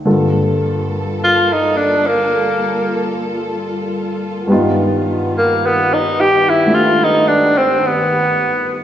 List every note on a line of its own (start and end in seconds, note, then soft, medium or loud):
0.05 4.46 G2 soft
0.05 4.49 D3 soft
0.05 4.45 G3 medium
0.05 4.45 A#3 medium
0.05 4.49 A#3 soft
0.05 4.49 F4 soft
0.05 6.66 F4 medium
0.05 4.45 A4 medium
0.05 4.49 A4 soft
1.24 1.54 F4 medium
1.53 1.78 D#4 medium
1.77 2.08 D4 medium
2.07 3.20 A#3 medium
4.47 8.84 G2 soft
4.47 8.84 D#3 medium
4.47 8.84 G3 soft
4.47 8.84 G3 medium
4.47 8.84 B3 medium
4.47 8.84 D#4 soft
4.52 6.67 F4 medium
5.38 5.68 A#3 medium
5.66 5.95 B3 medium
5.93 6.22 D#4 medium
6.20 6.51 G4 medium
6.49 6.76 E4 medium
6.66 8.84 A3 soft
6.66 8.84 D4 soft
6.66 8.84 F4 soft
6.66 8.84 G4 soft
6.72 7.06 F4 medium
6.72 8.84 G4 medium
7.04 7.29 D#4 medium
7.27 7.59 D4 medium
7.57 7.88 C4 medium
7.86 8.84 B3 medium